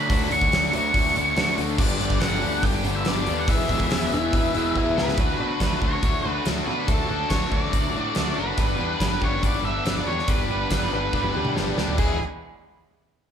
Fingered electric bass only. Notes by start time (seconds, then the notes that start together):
0.10 D2
0.32 D2
0.52 D2
0.74 D2
0.94 D2
1.16 D2
1.37 D2
1.58 D2
1.79 G1
2.01 G1
2.22 G1
2.43 D2
2.63 G1
2.85 G1
3.07 G1
3.27 D#2
3.48 E1
3.69 E1
3.91 E1
4.12 E1
4.33 E1
4.55 E1
4.76 E1
4.97 C#2
5.18 D2
5.39 B2
5.61 D2
5.82 D2
6.03 D2
6.25 D2
6.46 D2
6.67 B2
6.88 D2
7.10 D2
7.30 D2
7.52 D2
7.73 D2
7.96 A2
8.17 D2
8.38 F#1
8.58 G1
8.79 E2
9.01 G1
9.22 G1
9.43 G1
9.64 G1
9.85 G1
10.07 E2
10.28 G1
10.49 G1
10.71 G1
10.93 G1
11.13 G1
11.35 D2
11.56 G1
11.78 D2
11.98 E1